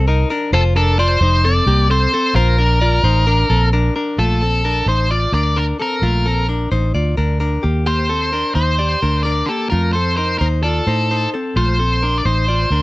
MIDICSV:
0, 0, Header, 1, 4, 480
1, 0, Start_track
1, 0, Key_signature, -2, "major"
1, 0, Tempo, 456969
1, 559, Time_signature, 4, 2, 24, 8
1, 5360, Tempo, 461184
1, 13395, End_track
2, 0, Start_track
2, 0, Title_t, "Lead electric guitar"
2, 0, Program_c, 0, 29
2, 570, Note_on_c, 0, 69, 92
2, 633, Note_off_c, 0, 69, 0
2, 804, Note_on_c, 0, 69, 78
2, 1040, Note_off_c, 0, 69, 0
2, 1044, Note_on_c, 0, 72, 110
2, 1523, Note_on_c, 0, 74, 102
2, 1534, Note_off_c, 0, 72, 0
2, 1965, Note_off_c, 0, 74, 0
2, 2007, Note_on_c, 0, 72, 92
2, 2470, Note_off_c, 0, 72, 0
2, 2475, Note_on_c, 0, 70, 91
2, 3873, Note_off_c, 0, 70, 0
2, 4402, Note_on_c, 0, 69, 73
2, 5129, Note_off_c, 0, 69, 0
2, 5133, Note_on_c, 0, 72, 88
2, 5365, Note_on_c, 0, 74, 92
2, 5374, Note_off_c, 0, 72, 0
2, 5597, Note_off_c, 0, 74, 0
2, 5609, Note_on_c, 0, 74, 85
2, 5848, Note_on_c, 0, 70, 61
2, 5851, Note_off_c, 0, 74, 0
2, 5912, Note_off_c, 0, 70, 0
2, 6104, Note_on_c, 0, 70, 69
2, 6768, Note_off_c, 0, 70, 0
2, 8241, Note_on_c, 0, 72, 85
2, 8934, Note_off_c, 0, 72, 0
2, 8946, Note_on_c, 0, 72, 93
2, 9629, Note_off_c, 0, 72, 0
2, 9655, Note_on_c, 0, 74, 84
2, 9894, Note_on_c, 0, 69, 73
2, 9913, Note_off_c, 0, 74, 0
2, 10127, Note_off_c, 0, 69, 0
2, 10141, Note_on_c, 0, 70, 83
2, 10379, Note_off_c, 0, 70, 0
2, 10383, Note_on_c, 0, 72, 73
2, 10619, Note_off_c, 0, 72, 0
2, 10632, Note_on_c, 0, 72, 80
2, 10853, Note_off_c, 0, 72, 0
2, 10857, Note_on_c, 0, 70, 86
2, 10925, Note_off_c, 0, 70, 0
2, 11110, Note_on_c, 0, 69, 70
2, 11793, Note_off_c, 0, 69, 0
2, 12088, Note_on_c, 0, 72, 81
2, 12724, Note_on_c, 0, 74, 61
2, 12750, Note_off_c, 0, 72, 0
2, 12798, Note_off_c, 0, 74, 0
2, 12806, Note_on_c, 0, 72, 89
2, 13395, Note_off_c, 0, 72, 0
2, 13395, End_track
3, 0, Start_track
3, 0, Title_t, "Clean electric guitar"
3, 0, Program_c, 1, 27
3, 80, Note_on_c, 1, 70, 82
3, 88, Note_on_c, 1, 63, 74
3, 306, Note_off_c, 1, 70, 0
3, 318, Note_on_c, 1, 70, 77
3, 323, Note_off_c, 1, 63, 0
3, 330, Note_on_c, 1, 62, 61
3, 555, Note_off_c, 1, 70, 0
3, 559, Note_on_c, 1, 72, 107
3, 564, Note_off_c, 1, 62, 0
3, 565, Note_on_c, 1, 65, 80
3, 792, Note_off_c, 1, 72, 0
3, 797, Note_on_c, 1, 70, 75
3, 801, Note_off_c, 1, 65, 0
3, 808, Note_on_c, 1, 62, 59
3, 1036, Note_off_c, 1, 70, 0
3, 1040, Note_on_c, 1, 74, 99
3, 1042, Note_off_c, 1, 62, 0
3, 1050, Note_on_c, 1, 65, 76
3, 1275, Note_off_c, 1, 74, 0
3, 1279, Note_on_c, 1, 72, 82
3, 1283, Note_off_c, 1, 65, 0
3, 1288, Note_on_c, 1, 63, 64
3, 1517, Note_off_c, 1, 72, 0
3, 1519, Note_on_c, 1, 69, 91
3, 1522, Note_off_c, 1, 63, 0
3, 1528, Note_on_c, 1, 60, 65
3, 1753, Note_off_c, 1, 69, 0
3, 1758, Note_off_c, 1, 60, 0
3, 1758, Note_on_c, 1, 67, 92
3, 1762, Note_on_c, 1, 58, 69
3, 1991, Note_off_c, 1, 67, 0
3, 1996, Note_on_c, 1, 69, 80
3, 1999, Note_off_c, 1, 58, 0
3, 2006, Note_on_c, 1, 60, 69
3, 2235, Note_off_c, 1, 69, 0
3, 2240, Note_off_c, 1, 60, 0
3, 2246, Note_on_c, 1, 69, 83
3, 2254, Note_on_c, 1, 60, 61
3, 2478, Note_on_c, 1, 72, 101
3, 2480, Note_off_c, 1, 69, 0
3, 2484, Note_off_c, 1, 60, 0
3, 2490, Note_on_c, 1, 65, 76
3, 2712, Note_off_c, 1, 72, 0
3, 2716, Note_on_c, 1, 70, 76
3, 2722, Note_off_c, 1, 65, 0
3, 2723, Note_on_c, 1, 62, 61
3, 2952, Note_off_c, 1, 70, 0
3, 2956, Note_on_c, 1, 74, 90
3, 2958, Note_off_c, 1, 62, 0
3, 2963, Note_on_c, 1, 65, 74
3, 3191, Note_off_c, 1, 74, 0
3, 3195, Note_on_c, 1, 72, 82
3, 3198, Note_off_c, 1, 65, 0
3, 3202, Note_on_c, 1, 63, 64
3, 3430, Note_off_c, 1, 72, 0
3, 3434, Note_on_c, 1, 70, 88
3, 3438, Note_off_c, 1, 63, 0
3, 3442, Note_on_c, 1, 62, 75
3, 3671, Note_off_c, 1, 70, 0
3, 3675, Note_on_c, 1, 69, 82
3, 3677, Note_off_c, 1, 62, 0
3, 3681, Note_on_c, 1, 60, 61
3, 3914, Note_off_c, 1, 69, 0
3, 3918, Note_off_c, 1, 60, 0
3, 3919, Note_on_c, 1, 70, 79
3, 3924, Note_on_c, 1, 62, 70
3, 4144, Note_off_c, 1, 70, 0
3, 4149, Note_off_c, 1, 62, 0
3, 4157, Note_on_c, 1, 70, 72
3, 4161, Note_on_c, 1, 62, 61
3, 4395, Note_on_c, 1, 65, 85
3, 4397, Note_off_c, 1, 70, 0
3, 4399, Note_off_c, 1, 62, 0
3, 4402, Note_on_c, 1, 57, 66
3, 4637, Note_off_c, 1, 65, 0
3, 4640, Note_off_c, 1, 57, 0
3, 4641, Note_on_c, 1, 69, 61
3, 4649, Note_on_c, 1, 60, 47
3, 4878, Note_off_c, 1, 69, 0
3, 4883, Note_on_c, 1, 70, 72
3, 4884, Note_off_c, 1, 60, 0
3, 4888, Note_on_c, 1, 62, 49
3, 5121, Note_off_c, 1, 70, 0
3, 5124, Note_off_c, 1, 62, 0
3, 5126, Note_on_c, 1, 72, 62
3, 5136, Note_on_c, 1, 63, 52
3, 5360, Note_off_c, 1, 72, 0
3, 5364, Note_on_c, 1, 74, 72
3, 5368, Note_off_c, 1, 63, 0
3, 5372, Note_on_c, 1, 65, 54
3, 5600, Note_off_c, 1, 74, 0
3, 5604, Note_on_c, 1, 70, 66
3, 5606, Note_off_c, 1, 65, 0
3, 5614, Note_on_c, 1, 62, 51
3, 5827, Note_off_c, 1, 70, 0
3, 5835, Note_off_c, 1, 62, 0
3, 5839, Note_on_c, 1, 70, 73
3, 5848, Note_on_c, 1, 62, 52
3, 6076, Note_off_c, 1, 70, 0
3, 6080, Note_on_c, 1, 69, 67
3, 6083, Note_off_c, 1, 62, 0
3, 6090, Note_on_c, 1, 60, 50
3, 6319, Note_off_c, 1, 69, 0
3, 6323, Note_on_c, 1, 65, 84
3, 6324, Note_off_c, 1, 60, 0
3, 6330, Note_on_c, 1, 57, 62
3, 6560, Note_off_c, 1, 65, 0
3, 6562, Note_on_c, 1, 69, 70
3, 6564, Note_off_c, 1, 57, 0
3, 6569, Note_on_c, 1, 60, 52
3, 6795, Note_off_c, 1, 69, 0
3, 6799, Note_on_c, 1, 70, 65
3, 6801, Note_off_c, 1, 60, 0
3, 6806, Note_on_c, 1, 62, 55
3, 7034, Note_off_c, 1, 70, 0
3, 7038, Note_on_c, 1, 72, 74
3, 7041, Note_off_c, 1, 62, 0
3, 7048, Note_on_c, 1, 63, 58
3, 7274, Note_off_c, 1, 72, 0
3, 7278, Note_on_c, 1, 74, 73
3, 7280, Note_off_c, 1, 63, 0
3, 7284, Note_on_c, 1, 65, 55
3, 7512, Note_off_c, 1, 74, 0
3, 7516, Note_on_c, 1, 70, 70
3, 7520, Note_off_c, 1, 65, 0
3, 7524, Note_on_c, 1, 62, 52
3, 7739, Note_off_c, 1, 70, 0
3, 7747, Note_off_c, 1, 62, 0
3, 7752, Note_on_c, 1, 70, 73
3, 7759, Note_on_c, 1, 62, 55
3, 7989, Note_on_c, 1, 67, 74
3, 7994, Note_off_c, 1, 70, 0
3, 7996, Note_on_c, 1, 58, 52
3, 7997, Note_off_c, 1, 62, 0
3, 8219, Note_off_c, 1, 67, 0
3, 8228, Note_off_c, 1, 58, 0
3, 8232, Note_on_c, 1, 67, 93
3, 8241, Note_on_c, 1, 58, 61
3, 8473, Note_on_c, 1, 69, 73
3, 8474, Note_off_c, 1, 67, 0
3, 8478, Note_off_c, 1, 58, 0
3, 8481, Note_on_c, 1, 60, 57
3, 8711, Note_off_c, 1, 69, 0
3, 8715, Note_on_c, 1, 70, 73
3, 8718, Note_off_c, 1, 60, 0
3, 8725, Note_on_c, 1, 62, 54
3, 8948, Note_off_c, 1, 70, 0
3, 8952, Note_on_c, 1, 72, 70
3, 8954, Note_off_c, 1, 62, 0
3, 8958, Note_on_c, 1, 63, 54
3, 9191, Note_off_c, 1, 72, 0
3, 9195, Note_on_c, 1, 74, 75
3, 9197, Note_off_c, 1, 63, 0
3, 9204, Note_on_c, 1, 67, 58
3, 9435, Note_off_c, 1, 74, 0
3, 9439, Note_off_c, 1, 67, 0
3, 9441, Note_on_c, 1, 70, 73
3, 9446, Note_on_c, 1, 62, 52
3, 9666, Note_off_c, 1, 70, 0
3, 9673, Note_off_c, 1, 62, 0
3, 9678, Note_on_c, 1, 70, 75
3, 9686, Note_on_c, 1, 62, 57
3, 9917, Note_off_c, 1, 70, 0
3, 9919, Note_on_c, 1, 67, 67
3, 9921, Note_off_c, 1, 62, 0
3, 9926, Note_on_c, 1, 58, 51
3, 10157, Note_off_c, 1, 67, 0
3, 10161, Note_off_c, 1, 58, 0
3, 10161, Note_on_c, 1, 65, 82
3, 10170, Note_on_c, 1, 57, 64
3, 10398, Note_off_c, 1, 65, 0
3, 10403, Note_off_c, 1, 57, 0
3, 10406, Note_on_c, 1, 69, 64
3, 10414, Note_on_c, 1, 60, 50
3, 10636, Note_off_c, 1, 69, 0
3, 10640, Note_on_c, 1, 70, 66
3, 10645, Note_off_c, 1, 60, 0
3, 10647, Note_on_c, 1, 63, 56
3, 10878, Note_off_c, 1, 70, 0
3, 10882, Note_off_c, 1, 63, 0
3, 10883, Note_on_c, 1, 72, 74
3, 10892, Note_on_c, 1, 63, 54
3, 11118, Note_off_c, 1, 72, 0
3, 11122, Note_on_c, 1, 74, 66
3, 11124, Note_off_c, 1, 63, 0
3, 11134, Note_on_c, 1, 65, 56
3, 11360, Note_off_c, 1, 74, 0
3, 11365, Note_off_c, 1, 65, 0
3, 11365, Note_on_c, 1, 72, 69
3, 11374, Note_on_c, 1, 63, 55
3, 11601, Note_off_c, 1, 72, 0
3, 11606, Note_off_c, 1, 63, 0
3, 11612, Note_on_c, 1, 72, 66
3, 11619, Note_on_c, 1, 63, 51
3, 11845, Note_off_c, 1, 72, 0
3, 11849, Note_off_c, 1, 63, 0
3, 11849, Note_on_c, 1, 69, 66
3, 11860, Note_on_c, 1, 60, 56
3, 12084, Note_off_c, 1, 69, 0
3, 12089, Note_off_c, 1, 60, 0
3, 12089, Note_on_c, 1, 65, 83
3, 12096, Note_on_c, 1, 57, 65
3, 12323, Note_on_c, 1, 69, 67
3, 12324, Note_off_c, 1, 65, 0
3, 12328, Note_off_c, 1, 57, 0
3, 12334, Note_on_c, 1, 60, 50
3, 12561, Note_off_c, 1, 69, 0
3, 12564, Note_on_c, 1, 70, 69
3, 12567, Note_off_c, 1, 60, 0
3, 12574, Note_on_c, 1, 62, 57
3, 12797, Note_off_c, 1, 70, 0
3, 12801, Note_on_c, 1, 72, 67
3, 12807, Note_off_c, 1, 62, 0
3, 12811, Note_on_c, 1, 63, 59
3, 13037, Note_off_c, 1, 72, 0
3, 13041, Note_on_c, 1, 74, 69
3, 13046, Note_off_c, 1, 63, 0
3, 13052, Note_on_c, 1, 65, 51
3, 13280, Note_off_c, 1, 74, 0
3, 13284, Note_on_c, 1, 70, 67
3, 13287, Note_off_c, 1, 65, 0
3, 13292, Note_on_c, 1, 62, 52
3, 13395, Note_off_c, 1, 62, 0
3, 13395, Note_off_c, 1, 70, 0
3, 13395, End_track
4, 0, Start_track
4, 0, Title_t, "Fingered electric bass"
4, 0, Program_c, 2, 33
4, 0, Note_on_c, 2, 36, 99
4, 246, Note_off_c, 2, 36, 0
4, 552, Note_on_c, 2, 29, 115
4, 1237, Note_off_c, 2, 29, 0
4, 1269, Note_on_c, 2, 29, 93
4, 1679, Note_off_c, 2, 29, 0
4, 1750, Note_on_c, 2, 36, 100
4, 2160, Note_off_c, 2, 36, 0
4, 2468, Note_on_c, 2, 34, 123
4, 3155, Note_off_c, 2, 34, 0
4, 3188, Note_on_c, 2, 33, 106
4, 3599, Note_off_c, 2, 33, 0
4, 3675, Note_on_c, 2, 34, 97
4, 4084, Note_off_c, 2, 34, 0
4, 4394, Note_on_c, 2, 34, 97
4, 5082, Note_off_c, 2, 34, 0
4, 5107, Note_on_c, 2, 33, 80
4, 5521, Note_off_c, 2, 33, 0
4, 5591, Note_on_c, 2, 38, 82
4, 6002, Note_off_c, 2, 38, 0
4, 6314, Note_on_c, 2, 34, 91
4, 6999, Note_off_c, 2, 34, 0
4, 7038, Note_on_c, 2, 33, 85
4, 7241, Note_off_c, 2, 33, 0
4, 7276, Note_on_c, 2, 38, 74
4, 7480, Note_off_c, 2, 38, 0
4, 7521, Note_on_c, 2, 38, 76
4, 7926, Note_off_c, 2, 38, 0
4, 8002, Note_on_c, 2, 39, 73
4, 8815, Note_off_c, 2, 39, 0
4, 8951, Note_on_c, 2, 39, 78
4, 9360, Note_off_c, 2, 39, 0
4, 9444, Note_on_c, 2, 38, 79
4, 9848, Note_off_c, 2, 38, 0
4, 10168, Note_on_c, 2, 41, 92
4, 10846, Note_off_c, 2, 41, 0
4, 10884, Note_on_c, 2, 39, 91
4, 11289, Note_off_c, 2, 39, 0
4, 11360, Note_on_c, 2, 45, 85
4, 11767, Note_off_c, 2, 45, 0
4, 12081, Note_on_c, 2, 34, 89
4, 12765, Note_off_c, 2, 34, 0
4, 12802, Note_on_c, 2, 33, 89
4, 13210, Note_off_c, 2, 33, 0
4, 13273, Note_on_c, 2, 38, 84
4, 13395, Note_off_c, 2, 38, 0
4, 13395, End_track
0, 0, End_of_file